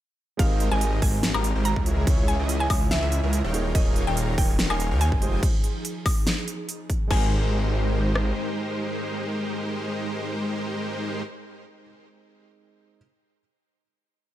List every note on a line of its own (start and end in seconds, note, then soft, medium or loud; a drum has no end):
0.37 0.69 G#1 loud
0.37 1.83 G#3 medium
0.37 0.69 G#3 loud
0.37 3.51 G#3 medium
0.37 1.83 C4 medium
0.37 1.85 C4 medium
0.37 1.84 D#4 medium
0.37 0.69 D#4 medium
0.37 1.85 G4 medium
0.37 0.69 G4 medium
0.37 1.84 G4 medium
0.37 0.69 A#4 medium
0.37 1.85 A#4 loud
0.37 0.69 C5 loud
0.37 0.64 F5 loud
0.37 kick loud
0.37 closed hi-hat medium
0.37 crash soft
0.60 closed hi-hat medium
0.71 1.00 G#1 loud
0.71 1.00 G#3 medium
0.71 1.00 D#4 medium
0.71 1.00 G4 medium
0.71 1.00 A#4 medium
0.71 1.00 D#5 loud
0.71 0.96 G#5 loud
0.81 closed hi-hat medium
1.02 1.32 G#1 loud
1.02 1.18 G#3 medium
1.02 1.18 D#4 medium
1.02 1.18 G4 medium
1.02 1.18 A#4 medium
1.02 1.18 C5 loud
1.02 1.27 G#5 medium
1.02 kick loud
1.02 open hi-hat medium
1.23 snare loud
1.23 closed hi-hat medium
1.34 1.53 G#1 loud
1.34 1.53 G#3 medium
1.34 1.53 D#4 medium
1.34 1.53 G4 medium
1.34 1.53 A#4 medium
1.34 1.53 F5 medium
1.34 1.59 A#5 medium
1.34 high woodblock medium
1.44 closed hi-hat medium
1.55 1.74 G#1 loud
1.55 1.74 G#3 medium
1.55 1.74 D#4 medium
1.55 1.74 G4 medium
1.55 1.74 A#4 medium
1.55 1.74 C5 medium
1.65 1.90 A#5 medium
1.65 closed hi-hat medium
1.76 2.05 C#2 loud
1.76 2.05 E4 medium
1.76 2.05 G#4 medium
1.76 2.05 A#4 loud
1.76 kick medium
1.85 3.52 C#3 medium
1.85 2.04 G#3 medium
1.85 2.05 C#4 medium
1.85 2.05 E4 medium
1.85 3.52 E4 loud
1.85 2.05 G#4 medium
1.85 2.05 C#5 loud
1.85 closed hi-hat medium
2.05 2.37 C#2 loud
2.05 3.51 G#3 medium
2.05 3.51 C#4 medium
2.05 3.52 E4 medium
2.05 2.37 E4 loud
2.05 2.37 G#4 medium
2.05 3.52 G#4 medium
2.05 2.37 C#5 loud
2.05 kick loud
2.05 closed hi-hat medium
2.05 crash soft
2.09 3.53 C#5 loud
2.28 2.53 G#5 medium
2.28 closed hi-hat medium
2.39 2.68 C#2 loud
2.39 2.68 E4 medium
2.39 2.68 G#4 medium
2.39 2.68 D#5 medium
2.49 closed hi-hat medium
2.60 2.85 G#5 loud
2.70 3.00 C#2 loud
2.70 2.86 E4 medium
2.70 2.86 G#4 medium
2.70 2.86 C#5 loud
2.70 kick loud
2.70 open hi-hat medium
2.70 high woodblock medium
2.91 3.67 E5 loud
2.91 snare loud
2.91 closed hi-hat medium
3.02 3.21 C#2 loud
3.02 3.21 E4 medium
3.02 3.21 G#4 medium
3.02 3.21 E5 medium
3.12 closed hi-hat medium
3.23 3.42 C#2 loud
3.23 3.42 E4 medium
3.23 3.42 G#4 medium
3.23 3.42 A#4 medium
3.33 closed hi-hat medium
3.44 3.73 D#1 loud
3.44 3.73 D#4 medium
3.44 3.73 A#4 medium
3.44 3.73 C#5 medium
3.44 3.73 F5 medium
3.44 3.73 G5 loud
3.53 5.20 D#3 medium
3.53 3.71 A#3 medium
3.53 5.20 C#4 medium
3.53 3.72 D#4 medium
3.53 3.73 F4 medium
3.53 7.07 G#4 loud
3.53 3.73 G#4 medium
3.53 3.73 C#5 loud
3.53 closed hi-hat medium
3.73 4.05 D#1 loud
3.73 5.18 A#3 medium
3.73 5.19 D#4 medium
3.73 4.05 D#4 loud
3.73 5.19 F4 medium
3.73 5.20 G#4 medium
3.73 4.05 A#4 medium
3.73 4.05 C#5 medium
3.73 5.20 C#5 loud
3.73 4.00 D#5 loud
3.73 4.05 F5 medium
3.73 4.05 G#5 loud
3.73 kick loud
3.73 closed hi-hat medium
3.73 crash medium
3.96 closed hi-hat medium
4.07 4.36 D#1 loud
4.07 4.36 D#4 medium
4.07 4.36 A#4 medium
4.07 4.36 C#5 medium
4.07 4.36 F5 medium
4.07 4.32 G5 medium
4.07 4.36 A#5 medium
4.17 closed hi-hat medium
4.38 4.68 D#1 loud
4.38 4.54 D#4 medium
4.38 4.54 A#4 medium
4.38 4.54 C#5 medium
4.38 4.54 F5 medium
4.38 4.63 G5 loud
4.38 4.54 G#5 loud
4.38 kick loud
4.38 open hi-hat medium
4.59 snare loud
4.59 closed hi-hat medium
4.70 4.93 D#1 loud
4.70 4.88 D#4 medium
4.70 4.88 A#4 medium
4.70 4.88 C#5 medium
4.70 4.88 F5 medium
4.70 4.95 G#5 medium
4.70 4.88 C6 medium
4.70 high woodblock medium
4.80 closed hi-hat medium
4.91 5.14 D#2 loud
4.91 5.09 D#4 medium
4.91 5.09 A#4 medium
4.91 5.09 C#5 medium
4.91 5.09 F5 medium
4.91 5.09 G5 medium
5.01 5.26 G#5 medium
5.01 closed hi-hat medium
5.12 5.41 F1 loud
5.12 5.40 F4 medium
5.12 5.40 C5 medium
5.12 5.40 D#5 medium
5.12 5.40 G5 medium
5.12 5.40 G#5 medium
5.12 kick medium
5.21 7.09 F3 medium
5.21 5.40 G#3 medium
5.21 5.40 D#4 medium
5.21 7.09 D#4 medium
5.21 5.40 F4 medium
5.21 5.41 G4 medium
5.21 5.41 C5 loud
5.21 closed hi-hat medium
5.43 kick loud
5.43 closed hi-hat medium
5.43 crash medium
5.64 closed hi-hat medium
5.85 closed hi-hat medium
6.06 kick loud
6.06 open hi-hat medium
6.06 high woodblock medium
6.27 snare loud
6.27 closed hi-hat medium
6.48 closed hi-hat medium
6.69 closed hi-hat medium
6.90 kick medium
6.90 closed hi-hat medium
7.08 8.32 G#1 loud
7.08 11.83 G#3 medium
7.08 11.22 G#3 medium
7.08 11.84 C4 medium
7.08 11.22 D#4 medium
7.08 11.86 D#4 medium
7.08 11.22 D#4 medium
7.08 11.22 G4 medium
7.08 11.22 A#4 medium
7.08 11.22 C5 loud
7.08 11.86 G#5 loud
7.08 kick loud
7.08 crash medium
7.14 11.89 A#4 loud
8.15 cross-stick medium